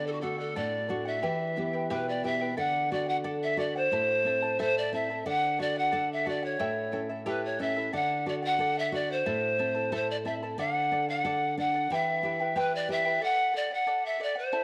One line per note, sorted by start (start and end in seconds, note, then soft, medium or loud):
0.00 0.54 D3 medium
0.00 0.20 A4 medium
0.00 0.21 D5 medium
0.00 0.21 F#5 medium
0.06 0.13 A4 medium
0.12 0.22 F#4 medium
0.20 0.76 A3 soft
0.20 0.77 D4 soft
0.20 0.77 F#4 soft
0.20 0.39 A4 medium
0.20 0.38 A4 medium
0.20 0.38 D5 medium
0.20 0.37 F#5 medium
0.38 0.58 A4 medium
0.38 0.55 D5 soft
0.38 0.55 F#5 medium
0.56 1.21 A2 medium
0.56 0.87 A4 medium
0.56 0.88 D5 medium
0.56 1.06 D5 medium
0.56 0.89 F#5 medium
0.88 1.16 A3 soft
0.88 1.16 D4 soft
0.88 1.17 F#4 soft
0.88 1.06 A4 medium
0.88 1.05 D5 medium
0.88 1.04 F#5 medium
1.05 1.22 D5 soft
1.05 1.87 E5 medium
1.05 1.23 F#5 medium
1.22 1.88 E3 medium
1.22 1.55 E4 medium
1.22 1.56 G4 medium
1.22 1.56 B4 medium
1.22 1.55 E5 medium
1.22 1.56 G5 medium
1.56 2.11 B3 soft
1.56 1.73 E4 medium
1.56 2.11 E4 soft
1.56 2.11 G4 soft
1.56 1.73 B4 medium
1.56 1.73 E5 medium
1.56 1.72 G5 medium
1.73 1.89 E4 soft
1.73 1.90 B4 soft
1.73 1.90 G5 soft
1.90 2.56 B2 medium
1.90 2.23 E4 medium
1.90 2.24 G4 medium
1.90 2.23 B4 loud
1.90 2.06 B4 medium
1.90 2.23 E5 medium
1.90 2.24 G5 medium
2.09 2.24 D5 medium
2.24 2.51 B3 soft
2.24 2.41 E4 medium
2.24 2.51 E4 soft
2.24 2.51 G4 soft
2.24 2.40 B4 medium
2.24 2.41 E5 medium
2.24 2.56 E5 medium
2.24 2.40 G5 medium
2.41 2.58 E4 soft
2.41 2.56 B4 soft
2.41 2.57 G5 soft
2.57 3.88 D3 medium
2.57 2.89 A4 medium
2.57 2.90 D5 medium
2.57 2.89 F#5 medium
2.57 2.91 F#5 medium
2.91 3.24 F#4 medium
2.91 3.08 A4 medium
2.91 3.07 D5 medium
2.91 3.05 F#5 medium
3.07 3.23 D5 soft
3.07 3.24 F#5 soft
3.07 3.16 F#5 medium
3.24 3.57 A4 medium
3.24 3.57 D5 medium
3.24 3.58 F#5 medium
3.43 3.61 E5 loud
3.57 3.90 F#4 medium
3.57 3.75 A4 medium
3.57 3.75 D5 medium
3.57 3.78 D5 medium
3.57 3.75 F#5 medium
3.76 4.59 C5 medium
3.76 3.93 D5 soft
3.76 3.92 F#5 medium
3.92 5.22 A2 medium
3.92 4.25 E4 medium
3.92 4.25 A4 medium
3.92 4.26 C5 medium
3.92 4.25 E5 medium
3.92 4.26 A5 medium
4.25 4.58 C4 soft
4.25 4.42 E4 medium
4.25 4.42 A4 medium
4.25 4.42 E5 medium
4.25 4.41 A5 medium
4.42 4.58 E4 soft
4.42 4.59 A4 soft
4.42 4.59 A5 medium
4.59 4.92 E4 medium
4.59 4.92 A4 medium
4.59 4.92 C5 medium
4.59 4.79 C5 loud
4.59 4.92 E5 medium
4.59 4.93 A5 medium
4.77 4.93 D5 loud
4.93 5.25 C4 medium
4.93 5.09 E4 medium
4.93 5.10 A4 medium
4.93 5.09 E5 medium
4.93 5.24 E5 medium
4.93 5.09 A5 medium
5.10 5.27 E4 soft
5.10 5.25 A4 soft
5.10 5.26 A5 medium
5.26 6.55 D3 medium
5.26 5.58 A4 medium
5.26 5.59 D5 medium
5.26 5.59 F#5 medium
5.26 5.58 F#5 loud
5.59 5.92 F#4 soft
5.59 5.76 A4 medium
5.59 5.76 D5 medium
5.59 5.80 D5 loud
5.59 5.75 F#5 medium
5.76 5.91 D5 soft
5.76 5.91 F#5 medium
5.76 6.10 F#5 medium
5.92 6.24 A4 medium
5.92 6.25 A4 medium
5.92 6.25 D5 medium
5.92 6.25 F#5 medium
6.12 6.30 E5 medium
6.25 6.59 F#4 medium
6.25 6.42 A4 medium
6.25 6.43 D5 medium
6.25 6.46 D5 medium
6.25 6.42 F#5 medium
6.43 7.00 C#5 medium
6.43 6.59 D5 soft
6.43 6.59 F#5 medium
6.59 7.89 A2 medium
6.59 6.91 E4 medium
6.59 6.92 A4 medium
6.59 6.93 C#5 medium
6.59 6.92 E5 medium
6.59 6.91 G5 medium
6.92 7.25 C#4 medium
6.92 7.09 E4 medium
6.92 7.09 A4 soft
6.92 7.08 E5 medium
6.92 7.09 G5 medium
7.09 7.25 E4 soft
7.09 7.25 A4 medium
7.09 7.26 E5 medium
7.26 7.58 E4 medium
7.26 7.58 G4 medium
7.26 7.59 A4 medium
7.26 7.43 B4 medium
7.26 7.59 C#5 medium
7.26 7.59 E5 medium
7.26 7.58 G5 medium
7.45 7.62 C#5 medium
7.59 7.92 C#4 medium
7.59 7.76 E4 medium
7.59 7.76 A4 medium
7.59 7.75 E5 medium
7.59 7.93 E5 medium
7.59 7.76 G5 medium
7.76 7.94 E4 soft
7.76 7.91 A4 soft
7.76 7.93 E5 medium
7.93 9.22 D3 medium
7.93 8.25 A4 medium
7.93 8.25 D5 medium
7.93 8.26 F#5 medium
7.93 8.25 F#5 medium
8.26 8.58 F#4 medium
8.26 8.43 A4 medium
8.26 8.43 D5 medium
8.26 8.34 D5 medium
8.26 8.41 F#5 medium
8.42 8.59 D5 soft
8.42 8.59 F#5 medium
8.42 8.80 F#5 loud
8.59 8.91 A4 medium
8.59 8.92 A4 medium
8.59 8.93 D5 medium
8.59 8.93 F#5 medium
8.78 8.94 E5 medium
8.92 9.25 F#4 medium
8.92 9.10 A4 medium
8.92 9.10 D5 medium
8.92 9.13 D5 medium
8.92 9.08 F#5 medium
9.09 9.93 C5 medium
9.09 9.26 D5 soft
9.09 9.26 F#5 soft
9.26 10.55 A2 medium
9.26 9.58 E4 medium
9.26 9.58 A4 medium
9.26 9.59 C5 medium
9.26 9.57 E5 medium
9.26 9.59 A5 medium
9.58 9.91 C4 soft
9.58 9.75 E4 medium
9.58 9.74 A4 medium
9.58 9.75 E5 medium
9.58 9.74 A5 medium
9.75 9.91 E4 soft
9.75 9.91 A4 soft
9.75 9.91 A5 medium
9.92 10.24 E4 medium
9.92 10.24 A4 medium
9.92 10.25 C5 medium
9.92 10.09 C5 medium
9.92 10.24 E5 medium
9.92 10.25 A5 medium
10.10 10.16 D5 medium
10.25 10.57 C4 medium
10.25 10.42 E4 medium
10.25 10.42 A4 medium
10.25 10.42 E5 medium
10.25 10.34 E5 medium
10.25 10.42 A5 medium
10.43 10.60 E4 soft
10.43 10.57 A4 soft
10.43 10.59 A5 soft
10.58 11.86 D3 medium
10.58 10.91 A4 medium
10.58 10.92 D5 medium
10.58 10.92 F#5 medium
10.58 11.05 F#5 loud
10.92 11.24 D4 medium
10.92 11.08 A4 medium
10.92 11.09 D5 medium
10.92 11.07 F#5 medium
11.09 11.24 D5 soft
11.09 11.25 F#5 medium
11.09 11.55 F#5 medium
11.25 11.57 A4 medium
11.25 11.57 D5 medium
11.25 11.58 F#5 medium
11.57 11.90 D4 medium
11.57 11.74 A4 medium
11.57 11.74 D5 medium
11.57 11.94 F#5 medium
11.57 11.73 F#5 medium
11.74 11.91 D5 soft
11.74 11.91 F#5 medium
11.90 13.18 E3 medium
11.90 12.23 E4 medium
11.90 12.24 G4 medium
11.90 12.24 B4 medium
11.90 12.23 E5 medium
11.90 12.58 E5 medium
11.90 12.24 G5 medium
12.23 12.41 E4 medium
12.23 12.55 G4 soft
12.23 12.40 B4 medium
12.23 12.40 E5 medium
12.23 12.39 G5 medium
12.40 12.55 E4 soft
12.40 12.55 B4 medium
12.40 12.56 G5 soft
12.56 12.88 E4 medium
12.56 12.89 G4 medium
12.56 12.88 B4 medium
12.56 12.89 B4 medium
12.56 12.76 B4 loud
12.56 12.88 E5 medium
12.56 12.89 G5 medium
12.75 12.92 D5 loud
12.89 13.05 E4 medium
12.89 13.21 G4 medium
12.89 13.05 B4 medium
12.89 13.06 E5 medium
12.89 13.23 E5 loud
12.89 13.04 G5 medium
13.05 13.23 E4 soft
13.05 13.21 B4 soft
13.05 13.22 G5 medium
13.21 13.53 A4 medium
13.21 13.53 D5 medium
13.21 13.54 F#5 medium
13.21 13.54 F#5 loud
13.54 13.71 A4 medium
13.54 13.71 D5 medium
13.54 13.70 F#5 medium
13.71 13.86 D5 soft
13.71 13.86 F#5 medium
13.71 14.03 F#5 medium
13.87 14.18 A4 medium
13.87 14.19 D5 medium
13.87 14.20 F#5 medium
14.05 14.24 E5 loud
14.20 14.37 A4 medium
14.20 14.36 D5 medium
14.20 14.38 D5 loud
14.20 14.34 F#5 medium
14.35 14.64 C5 medium
14.35 14.52 D5 soft
14.35 14.53 F#5 medium
14.52 14.64 E4 medium
14.52 14.64 A4 medium
14.52 14.64 C5 medium
14.52 14.64 E5 medium
14.52 14.64 A5 medium